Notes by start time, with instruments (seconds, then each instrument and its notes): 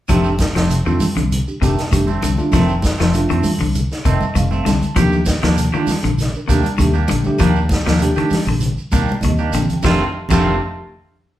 0.09 fingered electric bass F1, clean electric guitar D#3 F3 A3 C4, tine electric piano A3 D4 G4, kick, closed hi-hat, low conga, shekere
0.24 shekere
0.39 kick, snare, closed hi-hat, high conga, shekere
0.55 fingered electric bass F1, clean electric guitar F3 A3 C4, snare, closed hi-hat, shekere
0.70 closed hi-hat, shekere
0.85 fingered electric bass F2, clean electric guitar D#3 A3 C4, tine electric piano A3 D4 F4, shekere
1.00 muted fingered electric bass stroke, open hi-hat, high conga, low conga, shekere
1.16 fingered electric bass C2, clean electric guitar D3, closed hi-hat, low conga, shekere
1.32 closed hi-hat, shekere
1.48 tine electric piano D4 G4, shekere
1.61 fingered electric bass F1, clean electric guitar C3 D#3 A3, tine electric piano A3 D4 G4, kick, closed hi-hat, shekere
1.78 snare, closed hi-hat, shekere
1.91 fingered electric bass F1, clean electric guitar D#3, tine electric piano A3 D4 G4, kick, closed hi-hat, high conga, shekere
2.07 clean electric guitar A3 C4, high conga, shekere
2.22 fingered electric bass C2, clean electric guitar D3, closed hi-hat, high conga, shekere
2.38 tine electric piano A3 D4 F4, high conga, shekere
2.52 fingered electric bass F1, clean electric guitar D#3 F3 A3 C4, kick, snare, closed hi-hat, low conga, shekere
2.68 shekere
2.82 kick, snare, closed hi-hat, high conga, shekere
2.98 fingered electric bass F1, clean electric guitar F3 A3 C4, snare, closed hi-hat, shekere
3.13 tine electric piano A3 D4 F4, closed hi-hat, shekere
3.29 fingered electric bass F2, clean electric guitar D#3 A3 C4, closed hi-hat, shekere
3.43 muted fingered electric bass stroke, open hi-hat, high conga, low conga, shekere
3.59 fingered electric bass C2, clean electric guitar D3, low conga, shekere
3.75 closed hi-hat, shekere
3.91 snare, shekere
4.05 fingered electric bass F1, clean electric guitar C3 D#3 A3 C4, tine electric piano D#5, kick, closed hi-hat, shekere
4.21 high conga, shekere
4.35 fingered electric bass F1, clean electric guitar D#3, tine electric piano F5, kick, closed hi-hat, high conga, shekere
4.51 clean electric guitar A3 C4, high conga, shekere
4.65 fingered electric bass C2, clean electric guitar D3, tine electric piano A5, snare, closed hi-hat, high conga, shekere
4.82 muted fingered electric bass stroke, closed hi-hat, high conga, shekere
4.96 fingered electric bass D#2, clean electric guitar D#3 F3 G4, tine electric piano A3 D4 G4, muted clean electric guitar stroke, kick, closed hi-hat, low conga, shekere
5.12 shekere
5.25 kick, snare, closed hi-hat, high conga, shekere
5.42 fingered electric bass D#2, clean electric guitar F3 A#3 D4 G4, snare, closed hi-hat, shekere
5.57 closed hi-hat, shekere
5.73 clean electric guitar D#3 A#3 D4 G4, fingered electric bass D#3, tine electric piano A3 D4 F4, shekere
5.87 muted fingered electric bass stroke, snare, open hi-hat, high conga, low conga, shekere
6.03 fingered electric bass A#1, clean electric guitar D3, closed hi-hat, low conga, shekere
6.18 snare, closed hi-hat, shekere
6.34 tine electric piano D4 A#4, shekere
6.48 fingered electric bass D#2, clean electric guitar C3 D#3 A#3 D4 G4, tine electric piano A3 D4 G4, kick, closed hi-hat, shekere
6.63 closed hi-hat, high conga, shekere
6.78 fingered electric bass D#2, clean electric guitar D#3, tine electric piano A3 D4 G4, kick, closed hi-hat, high conga, shekere
6.94 clean electric guitar A#3 D4 G4, shekere
7.08 fingered electric bass A#1, clean electric guitar D3, closed hi-hat, high conga, shekere
7.24 tine electric piano A3 D4 G4, muted fingered electric bass stroke, high conga, shekere
7.39 fingered electric bass D#2, clean electric guitar D#3 F3 A#3 D4 G4, kick, closed hi-hat, low conga, shekere
7.55 shekere
7.69 kick, snare, closed hi-hat, high conga, shekere
7.86 fingered electric bass D#2, clean electric guitar F3 A#3 D4 G4, snare, closed hi-hat, shekere
7.99 tine electric piano A3 D4 G4, closed hi-hat, shekere
8.15 fingered electric bass D#3, clean electric guitar D#3 D4 G4, closed hi-hat, shekere
8.30 muted fingered electric bass stroke, snare, open hi-hat, high conga, low conga, shekere
8.46 fingered electric bass A#1, clean electric guitar D3, low conga, shekere
8.60 closed hi-hat, shekere
8.77 shekere
8.92 fingered electric bass D#2, clean electric guitar C3 D#3 A#3 D4 G4, kick, closed hi-hat, high conga, shekere
9.02 high conga
9.08 high conga, shekere
9.21 fingered electric bass D#2, clean electric guitar D#3, tine electric piano D#5, kick, closed hi-hat, high conga, shekere
9.31 low conga
9.38 clean electric guitar A#3 D4 G4, shekere
9.52 fingered electric bass A#1, clean electric guitar D3, tine electric piano G5, closed hi-hat, shekere
9.62 low conga
9.69 muted fingered electric bass stroke, closed hi-hat, shekere
9.73 low conga
9.83 fingered electric bass F1, clean electric guitar D#3 F3 A3 C4 F4, tine electric piano A3 D4 G4, kick, snare, low conga, shekere
10.29 fingered electric bass F1, clean electric guitar D#3 F3 A3 C4 F4, tine electric piano A3 D4 G4, kick, crash, low conga, shekere